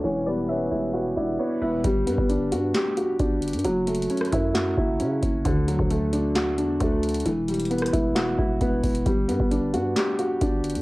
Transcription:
Already playing: harmonium F#4
0.04 808-style bass E1, grand piano E3, harmonium E3 G3 B3, felt piano C#4 C#5
0.26 grand piano G3, felt piano B3 B4, synth pluck D5
0.49 grand piano B3, felt piano C#4 C#5, synth pluck E5
0.71 808-style bass E1, grand piano E4
0.93 grand piano F#4
1.17 808-style bass E1, felt piano D4 D5, grand piano E4
1.39 grand piano B3, synth pluck C#5
1.62 808-style bass E1, felt piano E4 E5, synth pluck B4
1.84 808-style bass G1, grand piano G3, kick, closed hi-hat
2.07 808-style bass G2, grand piano B3, closed hi-hat
2.18 808-style bass G1, kick
2.29 grand piano D4, closed hi-hat
2.52 808-style bass G2, grand piano F#4, closed hi-hat
2.74 grand piano G4, snare, clap, closed hi-hat
2.97 grand piano F#4, closed hi-hat
3.19 808-style bass G1, grand piano D4, kick, closed hi-hat
3.42 closed hi-hat
3.48 closed hi-hat
3.53 808-style bass G2, closed hi-hat
3.59 closed hi-hat
3.65 808-style bass F#1, grand piano F#3, closed hi-hat
3.87 grand piano A3, closed hi-hat
3.95 closed hi-hat
4.02 closed hi-hat
4.10 grand piano C#4, closed hi-hat
4.17 cross-stick, closed hi-hat
4.25 closed hi-hat
4.32 808-style bass F#2, grand piano E4, kick, closed hi-hat
4.54 grand piano F#4, snare, clap, closed hi-hat
4.78 808-style bass F#1, grand piano E4, kick
5.00 808-style bass C#3, grand piano C#4, closed hi-hat
5.23 808-style bass F#1, kick, closed hi-hat
5.45 808-style bass D2, grand piano D3, kick, closed hi-hat
5.68 grand piano F#3, closed hi-hat
5.79 808-style bass D2, kick
5.90 grand piano A3, closed hi-hat
6.13 grand piano D4, closed hi-hat
6.35 grand piano F#4, snare, clap, closed hi-hat
6.58 808-style bass E2, grand piano D4, closed hi-hat
6.80 808-style bass D2, grand piano A3, kick, closed hi-hat
7.03 closed hi-hat
7.09 closed hi-hat
7.14 closed hi-hat
7.20 closed hi-hat
7.26 808-style bass E1, grand piano E3, closed hi-hat
7.48 grand piano G3, closed hi-hat
7.54 closed hi-hat
7.59 closed hi-hat
7.65 closed hi-hat
7.71 grand piano B3, closed hi-hat
7.78 cross-stick, closed hi-hat
7.86 closed hi-hat
7.93 808-style bass E1, grand piano E4, kick, closed hi-hat
8.15 grand piano F#4, snare, clap, closed hi-hat
8.38 808-style bass E1, grand piano E4, kick
8.61 808-style bass E1, grand piano B3, kick, closed hi-hat
8.84 808-style bass E1, kick, closed hi-hat, open hi-hat
8.95 closed hi-hat
9.06 808-style bass G1, grand piano G3, kick, closed hi-hat
9.29 808-style bass G2, grand piano B3, closed hi-hat
9.40 808-style bass G1, kick
9.51 grand piano D4, closed hi-hat
9.74 808-style bass G2, grand piano F#4, closed hi-hat
9.96 grand piano G4, snare, clap, closed hi-hat
10.19 grand piano F#4, closed hi-hat
10.41 808-style bass G1, grand piano D4, kick, closed hi-hat
10.64 closed hi-hat
10.70 closed hi-hat
10.75 808-style bass G2, closed hi-hat

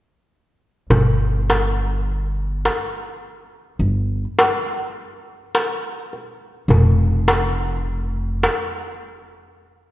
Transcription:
0.90 upright bass G1, darbuka dum
1.50 darbuka tek
2.65 darbuka tek
3.79 upright bass G1
4.39 darbuka tek
5.55 darbuka tek
6.13 darbuka ka
6.68 upright bass F1, darbuka dum
7.28 darbuka tek
8.43 darbuka tek

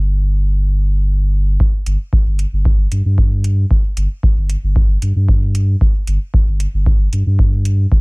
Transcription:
Already playing: sub bass G1
1.60 kick
1.86 sub bass G1, closed hi-hat
2.13 kick
2.26 sub bass G1
2.39 closed hi-hat
2.53 sub bass G1
2.65 kick
2.92 sub bass G2, closed hi-hat
3.05 sub bass G2
3.18 kick
3.44 closed hi-hat
3.71 kick
3.97 sub bass G1, closed hi-hat
4.23 kick
4.37 sub bass G1
4.50 closed hi-hat
4.63 sub bass G1
4.76 kick
5.02 sub bass G2, closed hi-hat
5.16 sub bass G2
5.29 kick
5.55 closed hi-hat
5.81 kick
6.07 sub bass G1, closed hi-hat
6.34 kick
6.47 sub bass G1
6.60 closed hi-hat
6.74 sub bass G1
6.86 kick
7.13 sub bass G2, closed hi-hat
7.26 sub bass G2
7.39 kick
7.65 closed hi-hat
7.92 kick

